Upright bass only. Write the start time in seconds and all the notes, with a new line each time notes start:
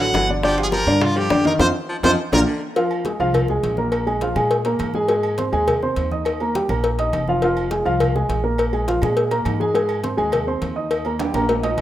Already playing: A1
0.14 G1
0.86 G2
1.30 F2
1.59 F2
2.03 F2
2.32 A#1
3.20 C2
3.63 A#1
4.35 A#2
4.80 G#2
5.53 D#2
5.96 D#2
6.69 A#1
7.13 F1
7.85 C2
8.29 A#1
9.02 A#2
9.45 G#2
10.18 D#2
10.61 D#2
11.34 A#1
11.77 F1